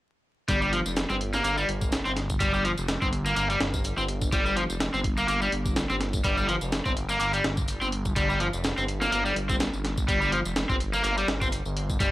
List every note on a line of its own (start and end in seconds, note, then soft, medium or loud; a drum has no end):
0.48 0.82 G1 medium
0.48 0.61 G3 loud
0.48 kick loud
0.48 closed hi-hat medium
0.48 tambourine soft
0.62 0.70 G3 medium
0.62 tambourine soft
0.73 0.79 F3 medium
0.73 closed hi-hat medium
0.86 1.05 F1 medium
0.86 tambourine medium
0.96 snare loud
0.96 closed hi-hat medium
0.96 tambourine soft
1.09 1.42 G1 medium
1.09 1.15 C4 medium
1.09 tambourine soft
1.21 closed hi-hat medium
1.33 1.43 A#3 medium
1.33 snare soft
1.33 tambourine medium
1.44 1.65 G1 medium
1.44 1.56 A#3 medium
1.44 closed hi-hat medium
1.44 tambourine soft
1.58 1.66 G3 medium
1.58 tambourine soft
1.68 2.02 G1 medium
1.68 closed hi-hat medium
1.81 kick medium
1.81 tambourine medium
1.92 snare loud
1.92 closed hi-hat medium
1.92 tambourine medium
2.05 2.37 G1 medium
2.05 2.11 C4 medium
2.05 tambourine soft
2.17 snare soft
2.17 closed hi-hat medium
2.30 kick medium
2.30 tambourine medium
2.40 2.74 G1 medium
2.40 2.52 G3 loud
2.40 kick loud
2.40 closed hi-hat medium
2.40 tambourine soft
2.54 2.62 G3 medium
2.54 tambourine soft
2.64 2.71 F3 medium
2.64 closed hi-hat medium
2.78 2.97 F1 medium
2.78 tambourine medium
2.88 snare loud
2.88 closed hi-hat medium
2.88 tambourine soft
3.02 3.34 G1 medium
3.02 3.07 C4 medium
3.02 kick medium
3.02 tambourine soft
3.13 closed hi-hat medium
3.26 3.35 A#3 medium
3.26 tambourine medium
3.36 3.57 G1 medium
3.36 3.49 A#3 medium
3.36 closed hi-hat medium
3.36 tambourine soft
3.50 3.58 G3 medium
3.50 closed hi-hat soft
3.50 tambourine soft
3.60 3.94 G1 medium
3.60 snare loud
3.60 closed hi-hat medium
3.74 kick medium
3.74 tambourine medium
3.84 closed hi-hat medium
3.84 tambourine medium
3.98 4.29 G1 medium
3.98 4.03 C4 medium
3.98 tambourine soft
4.08 closed hi-hat medium
4.22 kick medium
4.22 tambourine medium
4.32 4.66 G1 loud
4.32 4.45 G3 loud
4.32 kick loud
4.32 closed hi-hat medium
4.32 tambourine soft
4.46 4.54 G3 medium
4.46 tambourine soft
4.56 4.63 F3 medium
4.56 closed hi-hat medium
4.70 4.89 F1 loud
4.70 tambourine medium
4.80 snare loud
4.80 closed hi-hat medium
4.80 tambourine soft
4.94 5.25 G1 medium
4.94 4.99 C4 medium
4.94 tambourine soft
5.04 kick medium
5.04 closed hi-hat medium
5.18 5.27 A#3 medium
5.18 tambourine medium
5.28 5.49 G1 medium
5.28 5.40 A#3 medium
5.28 closed hi-hat medium
5.28 tambourine soft
5.42 5.50 G3 medium
5.42 tambourine soft
5.52 5.86 G1 medium
5.52 closed hi-hat medium
5.66 kick medium
5.66 tambourine medium
5.76 snare loud
5.76 closed hi-hat medium
5.76 tambourine medium
5.90 6.21 G1 medium
5.90 5.95 C4 medium
5.90 tambourine soft
6.01 snare soft
6.01 closed hi-hat medium
6.13 kick medium
6.13 tambourine medium
6.24 6.58 G1 medium
6.24 6.37 G3 loud
6.24 kick loud
6.24 closed hi-hat medium
6.24 tambourine soft
6.37 6.46 G3 medium
6.37 tambourine soft
6.48 6.55 F3 medium
6.48 closed hi-hat medium
6.61 6.81 F1 loud
6.61 tambourine medium
6.72 snare loud
6.72 closed hi-hat medium
6.72 tambourine soft
6.85 7.17 G1 medium
6.85 6.91 C4 medium
6.85 kick medium
6.85 tambourine soft
6.97 closed hi-hat medium
7.09 7.19 A#3 medium
7.09 tambourine medium
7.20 7.41 G1 medium
7.20 7.32 A#3 medium
7.20 closed hi-hat medium
7.20 tambourine soft
7.33 7.42 G3 medium
7.33 closed hi-hat soft
7.33 tambourine soft
7.44 7.78 G1 medium
7.44 snare loud
7.44 closed hi-hat medium
7.57 kick medium
7.57 tambourine medium
7.68 closed hi-hat medium
7.68 tambourine soft
7.81 8.13 G1 medium
7.81 7.87 C4 medium
7.81 tambourine soft
7.92 closed hi-hat medium
8.05 kick medium
8.05 tambourine medium
8.16 8.50 G1 loud
8.16 8.28 G3 medium
8.16 kick loud
8.16 closed hi-hat medium
8.16 tambourine soft
8.30 8.38 G3 medium
8.30 tambourine soft
8.40 8.46 F3 medium
8.40 closed hi-hat medium
8.53 8.73 F1 loud
8.53 tambourine medium
8.64 snare loud
8.64 closed hi-hat medium
8.64 tambourine soft
8.77 9.09 G1 medium
8.77 8.83 C4 medium
8.77 tambourine soft
8.88 closed hi-hat medium
9.01 9.11 A#3 medium
9.01 snare soft
9.01 tambourine medium
9.12 9.33 G1 medium
9.12 9.24 A#3 loud
9.12 closed hi-hat medium
9.12 tambourine soft
9.25 9.34 G3 medium
9.25 tambourine soft
9.36 9.70 G1 medium
9.36 closed hi-hat medium
9.49 9.54 C4 medium
9.49 kick medium
9.49 tambourine medium
9.60 snare loud
9.60 closed hi-hat medium
9.60 tambourine soft
9.73 10.05 G1 medium
9.73 tambourine soft
9.84 snare soft
9.84 closed hi-hat medium
9.97 kick medium
9.97 tambourine medium
10.08 10.42 G1 loud
10.08 10.20 G3 loud
10.08 kick loud
10.08 closed hi-hat medium
10.08 tambourine soft
10.21 10.30 G3 medium
10.21 tambourine soft
10.32 10.38 F3 medium
10.32 closed hi-hat medium
10.45 10.65 F1 medium
10.45 tambourine medium
10.56 snare loud
10.56 closed hi-hat medium
10.56 tambourine soft
10.69 11.01 G1 medium
10.69 10.75 C4 medium
10.69 kick medium
10.69 tambourine soft
10.80 closed hi-hat medium
10.93 11.03 A#3 loud
10.93 tambourine medium
11.04 11.24 G1 medium
11.04 11.16 A#3 medium
11.04 closed hi-hat medium
11.04 tambourine soft
11.18 11.26 G3 medium
11.18 closed hi-hat soft
11.18 tambourine soft
11.28 11.62 G1 medium
11.28 snare loud
11.28 closed hi-hat medium
11.42 11.47 C4 medium
11.42 kick medium
11.42 tambourine medium
11.52 closed hi-hat medium
11.52 tambourine soft
11.65 11.97 G1 loud
11.65 tambourine soft
11.77 closed hi-hat medium
11.89 kick medium
11.89 tambourine medium
12.00 12.11 G1 medium
12.00 12.11 G3 loud
12.00 kick loud
12.00 closed hi-hat medium
12.00 tambourine soft